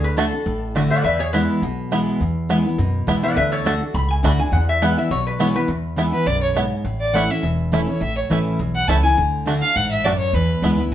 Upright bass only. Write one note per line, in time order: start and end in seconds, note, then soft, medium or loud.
0.00 0.29 D2 loud
0.46 0.88 A1 medium
1.04 1.46 E2 loud
1.62 2.04 B1 medium
2.20 2.62 E2 medium
2.78 3.03 F#2 medium
3.07 3.32 E2 medium
3.36 3.78 D2 loud
3.94 4.19 C#2 medium
4.23 4.48 D2 medium
4.52 4.94 E2 loud
5.11 5.53 B1 medium
5.68 6.10 E2 medium
6.26 6.68 B1 medium
6.84 7.27 A1 medium
7.43 7.85 E1 medium
8.01 8.22 A1 loud
8.31 8.55 A1 medium
8.60 8.84 B1 medium
8.88 9.13 C#2 medium
9.18 9.60 D2 loud
9.76 10.18 A1 medium
10.33 10.54 E2 medium
10.62 10.87 D2 medium